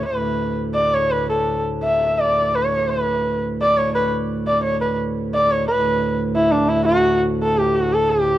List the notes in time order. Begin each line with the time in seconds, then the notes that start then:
0.05 D2 A2 B4
0.74 D5
0.94 C#5
1.11 B4
1.30 A4
1.83 E5
2.20 D5
2.55 C#5
2.90 B4
3.62 D5
3.77 C#5
3.95 B4
4.47 D5
4.63 C#5
4.81 B4
5.34 D5
5.52 C#5
5.68 D2 A2 B4
6.36 E4
6.51 D4
6.69 E4
6.86 F#4
7.43 A4
7.58 G4
7.76 F#4
7.94 A4
8.10 G4